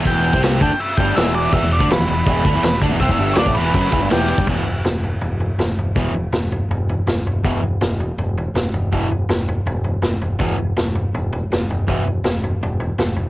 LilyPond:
<<
  \new Staff \with { instrumentName = "Transistor combo organ" } { \time 4/4 \key e \minor \tempo 4 = 162 g''4 r8 g''8 e''8 g''8 e''8 d''8 | e''8 d''8 b'8 b'2 r8 | e''4 <cis'' d''>8 b'4. g'4 | r1 |
r1 | r1 | r1 | r1 |
r1 | }
  \new Staff \with { instrumentName = "Distorted electric guitar" } { \clef bass \time 4/4 \key e \minor <e, e>8. <c c'>8. <d d'>16 r8. <g, g>8 <e, e>4 | <e, e>16 e,8 <d d'>16 e,16 e,16 e,8 <e, e>8 <d d'>16 <e, e>16 e,8 <d d'>16 <e, e>16 | <c c'>16 <e, e>16 <g, g>8 <d d'>16 <a, a>16 <e, e>8 <fis, fis>8 <e, e>16 <g, g>16 <e, e>8. <g, g>16 | <e, b, e>8 r2. r8 |
<e, b, e>8 r2. r8 | <e, b, e>8 r2. r8 | <e, b, e>8 r2. r8 | <e, b, e>8 r2. r8 |
<e, b, e>8 r2. r8 | }
  \new Staff \with { instrumentName = "Fingered electric bass" } { \clef bass \time 4/4 \key e \minor e,,8. c,8. d,16 r8. g,,8 e,,4 | e,,16 e,,8 d,16 e,,16 e,,16 e,,8 e,,8 d,16 e,,16 e,,8 d,16 e,,16 | c,16 e,,16 g,,8 d,16 a,,16 e,,8 fis,,8 e,,16 g,,16 e,,8. g,,16 | e,,8 e,,8 e,,4 e,,4 e,,8 e,,8 |
e,,8 e,,8 e,,4 e,,4 e,,8 e,,8 | e,,8 e,,8 e,,4 e,,4 e,,8 e,,8 | e,,8 e,,8 e,,4 e,,4 e,,8 e,,8 | e,,8 e,,8 e,,4 e,,4 e,,8 e,,8 |
e,,8 e,,8 e,,4 e,,4 e,,8 e,,8 | }
  \new DrumStaff \with { instrumentName = "Drums" } \drummode { \time 4/4 <bd cymr>8 cymr16 bd16 <cymr sn>8 <bd cymr>8 cymr8 <bd cymr>8 <cymr sn>8 cymr8 | <cymc bd>8 cymr16 bd16 <cymr sn>8 cymr8 <bd cymr>8 <bd cymr>8 <cymr sn>8 <bd cymr>8 | <bd cymr>16 bd16 cymr8 <cymr sn>16 bd16 cymr8 <bd cymr>8 <bd cymr>8 <cymr sn>8 cymr16 bd16 | <cymc bd tomfh>8 tomfh8 <sn tomfh>8 tomfh8 tomfh8 tomfh8 <sn tomfh>8 tomfh8 |
<bd tomfh>8 tomfh8 <sn tomfh>8 tomfh8 tomfh8 tomfh8 <sn tomfh>8 tomfh8 | <bd tomfh>8 tomfh8 <sn tomfh>8 tomfh8 tomfh8 tomfh8 <sn tomfh>8 tomfh8 | <bd tomfh>8 tomfh8 <sn tomfh>8 tomfh8 tomfh8 tomfh8 <sn tomfh>8 tomfh8 | <bd tomfh>8 tomfh8 <sn tomfh>8 tomfh8 tomfh8 tomfh8 <sn tomfh>8 tomfh8 |
<bd tomfh>8 tomfh8 <sn tomfh>8 tomfh8 tomfh8 tomfh8 <sn tomfh>8 tomfh8 | }
>>